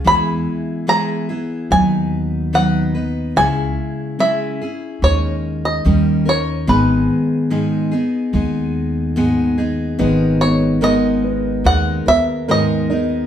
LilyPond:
<<
  \new Staff \with { instrumentName = "Five-string banjo" } { \time 4/4 \key gis \minor \tempo 4 = 72 b''4 ais''4 gis''4 fis''4 | gis''4 e''4 cis''8. dis''8. cis''8 | b'2.~ b'8 r8 | r8 cis''8 dis''4 fis''8 e''8 dis''4 | }
  \new Staff \with { instrumentName = "Steel-string acoustic guitar" } { \time 4/4 \key gis \minor <e gis b e' gis'>4 <e gis b e' gis'>8 <b e' gis'>8 <fis b dis' b'>4 <dis fis b dis' b'>8 <b dis' b'>8 | <cis gis cis' e' gis'>4 <cis gis cis' e' gis'>8 <cis' e' gis'>8 <gis cis' dis' ais'>4 <dis g cis' dis' ais'>8 <cis' dis' ais'>8 | <gis, dis gis b dis' gis'>4 <gis, dis gis b dis' gis'>8 <gis b dis' gis'>8 <gis b dis' gis'>4 <gis, dis gis b dis' gis'>8 <gis b dis' gis'>8 | <gis, dis gis b dis' ais'>4 <gis, dis gis b dis' ais'>4 <gis b dis' ais'>8 <gis b ais'>8 <gis, dis gis b dis' ais'>8 <gis b dis' ais'>8 | }
  \new Staff \with { instrumentName = "Upright piano" } { \time 4/4 \key gis \minor r1 | r1 | r1 | b8 b8 ais'8 b4 b8 ais'8 dis'8 | }
  \new Staff \with { instrumentName = "Upright bass" } { \clef bass \time 4/4 \key gis \minor e,8 r4. dis,2 | cis,8 r4. dis,4 dis,4 | gis,,8 r4. dis,2 | gis,,2 dis,8 dis,4. | }
>>